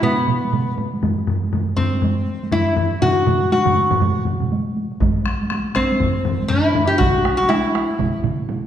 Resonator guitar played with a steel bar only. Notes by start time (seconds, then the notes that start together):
0.03 B3
1.77 C4
2.52 E4
3.02 F#4
3.52 F#4
5.76 C4
6.48 E4
6.87 G4
6.98 F#4
7.37 F#4
7.49 E4